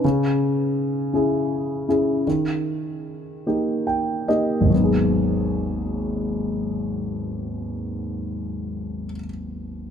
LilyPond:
\new Staff \with { instrumentName = "Grand piano" } { \time 6/8 \key gis \minor \tempo 4. = 46 << { r2. | r2 g''8 dis''8 | r2. | r2. | } \\ { cis4. <cis' e' gis'>4 <cis' e' gis'>8 | dis4. <ais dis' g'>4 <ais dis' g'>8 | <gis,, dis, fis b dis' gis'>2.~ | <gis,, dis, fis b dis' gis'>2. | } >> }